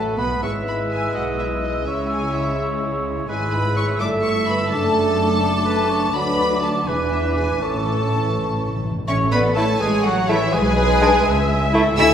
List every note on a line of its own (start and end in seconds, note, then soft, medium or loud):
0.00 0.18 A1 medium
0.00 0.18 A2 medium
0.00 0.18 A3 medium
0.00 0.20 A3 medium
0.00 0.17 A4 medium
0.00 0.19 A4 medium
0.00 0.38 B4 medium
0.00 0.19 A5 medium
0.17 0.42 B1 medium
0.17 0.42 B2 medium
0.17 0.42 B3 medium
0.17 0.42 B4 medium
0.17 0.43 B4 medium
0.17 0.42 B5 medium
0.42 1.11 G#1 medium
0.42 1.11 G#2 medium
0.42 1.82 G#3 medium
0.42 3.25 G#3 soft
0.42 1.82 E4 medium
0.42 1.83 B4 medium
0.42 0.67 C#5 medium
0.42 1.16 E5 medium
0.42 0.51 C#6 medium
0.42 3.06 E6 medium
0.67 0.91 B4 medium
0.67 0.76 B5 medium
0.92 1.15 G#4 medium
0.92 1.15 G#5 medium
1.14 1.87 B1 soft
1.14 1.87 B2 soft
1.14 1.39 F#4 medium
1.14 1.86 D#5 medium
1.14 1.23 F#5 medium
1.39 1.63 E4 medium
1.39 1.47 E5 medium
1.62 1.71 D#4 medium
1.62 1.86 D#5 medium
1.86 3.26 C#2 medium
1.86 3.26 C#3 medium
1.86 3.26 G#3 medium
1.86 3.26 E4 medium
1.86 2.10 E4 medium
1.86 3.27 E4 medium
1.86 3.27 C#5 medium
1.86 2.10 E5 medium
2.10 2.34 G#4 medium
2.10 2.33 G#5 medium
2.34 2.58 E4 medium
2.34 2.58 E5 medium
3.28 3.96 G#1 medium
3.28 3.97 G#2 medium
3.28 3.98 G#3 medium
3.28 4.02 G#3 medium
3.28 3.97 G#3 medium
3.28 3.98 E4 medium
3.28 4.67 E4 medium
3.28 3.51 G#4 medium
3.28 4.02 B4 medium
3.28 3.51 G#5 medium
3.28 4.69 E6 medium
3.52 3.76 B4 medium
3.52 3.77 B5 medium
3.75 4.00 C#5 medium
3.75 3.85 C#6 medium
4.00 4.70 G1 medium
4.00 4.70 G2 medium
4.00 6.15 A3 medium
4.00 4.69 A3 medium
4.00 6.11 A3 medium
4.00 4.70 E4 medium
4.00 6.59 A4 medium
4.00 4.10 D5 medium
4.00 5.15 E5 medium
4.00 4.08 D6 medium
4.23 4.33 C#5 medium
4.23 4.47 C#6 medium
4.48 4.72 B4 medium
4.48 4.71 B5 medium
4.71 6.15 F#1 medium
4.71 6.15 F#2 medium
4.71 6.12 A3 medium
4.71 7.57 D4 medium
4.71 6.13 D4 medium
4.71 6.12 A4 medium
4.71 6.12 A5 loud
4.71 8.02 D6 medium
5.41 5.64 D5 medium
5.65 5.91 B4 medium
5.89 6.13 C#5 medium
6.13 6.86 D2 medium
6.13 6.86 F#3 medium
6.13 6.84 F#3 medium
6.13 6.61 F#3 medium
6.13 6.85 D4 medium
6.13 6.62 B4 medium
6.13 6.89 D5 medium
6.13 6.63 B5 loud
6.63 6.87 A4 medium
6.63 6.87 A5 medium
6.86 7.61 E1 medium
6.86 7.61 E2 medium
6.86 7.60 E3 medium
6.86 8.84 E3 medium
6.86 8.80 E3 medium
6.86 7.59 D4 medium
6.86 6.95 G#4 medium
6.86 7.61 B4 medium
6.86 7.63 B4 medium
6.86 7.12 G#5 medium
7.10 7.18 E4 medium
7.10 7.37 E5 medium
7.35 7.43 G#4 medium
7.35 7.61 G#5 medium
7.60 8.85 A1 medium
7.60 7.67 A2 soft
7.60 8.86 A2 medium
7.60 8.82 E3 medium
7.60 8.84 C#4 medium
7.60 8.81 A4 medium
7.60 8.84 A4 medium
7.60 8.70 C#5 medium
7.60 8.84 A5 medium
7.68 7.74 A2 soft
7.75 7.83 A2 soft
7.84 7.90 A2 soft
7.91 7.98 A2 soft
7.99 8.06 A2 soft
8.07 8.14 A2 soft
8.15 8.22 A2 soft
8.23 8.29 A2 medium
8.30 8.37 A2 medium
8.30 8.80 C#6 medium
8.38 8.44 A2 medium
8.45 8.52 A2 medium
8.53 8.59 A2 medium
8.60 8.67 A2 medium
8.68 8.75 A2 medium
8.76 8.82 A2 medium
8.83 8.90 A2 medium
8.91 8.97 A2 medium
8.98 9.06 A2 medium
9.08 9.72 A1 loud
9.08 9.77 A2 medium
9.08 9.31 C#4 medium
9.08 9.17 C#4 medium
9.08 9.77 A4 medium
9.08 9.31 C#5 loud
9.08 9.17 C#5 medium
9.08 9.14 E5 medium
9.08 9.16 C#6 medium
9.31 9.43 B3 medium
9.31 9.57 B3 medium
9.31 9.43 B4 medium
9.31 9.57 B4 medium
9.31 9.54 D5 medium
9.31 9.40 B5 loud
9.54 9.65 A3 medium
9.54 9.81 A3 medium
9.54 9.66 A3 medium
9.54 9.65 E4 medium
9.54 9.67 A4 medium
9.54 9.81 A4 medium
9.54 9.81 C#5 medium
9.54 9.80 A5 loud
9.80 10.45 A1 medium
9.80 10.04 G#3 medium
9.80 10.05 G#3 medium
9.80 10.05 G#4 medium
9.80 10.02 B4 medium
9.80 10.53 C#5 medium
9.80 10.05 G#5 loud
10.03 10.29 F#3 medium
10.03 10.12 F#4 medium
10.03 10.29 F#4 medium
10.03 10.09 A4 medium
10.03 10.29 F#5 loud
10.27 10.38 E3 medium
10.27 10.54 E3 medium
10.27 10.37 A3 medium
10.27 10.37 E4 medium
10.27 10.54 E4 medium
10.27 10.53 E4 medium
10.27 10.38 E4 medium
10.27 10.33 G#4 medium
10.27 10.54 E5 loud
10.53 11.17 B1 loud
10.53 11.72 G#3 loud
10.53 11.74 G#3 loud
10.53 11.74 G#4 loud
10.53 11.72 G#4 loud
10.53 11.71 B4 loud
10.53 11.26 B4 loud
10.53 11.74 G#5 loud
11.02 11.10 G#3 medium
11.02 11.10 D4 loud
11.24 11.89 C#2 loud
11.24 11.96 E5 loud
11.73 11.83 A3 medium
11.73 11.81 E4 loud
11.97 12.14 D2 loud
11.97 12.14 A3 medium
11.97 12.06 E4 loud
11.97 12.10 E4 loud
11.97 12.14 F#4 loud
11.97 12.14 A4 loud
11.97 12.14 E5 loud
11.97 12.09 E5 loud
11.97 12.14 G#5 loud
11.97 12.14 E6 loud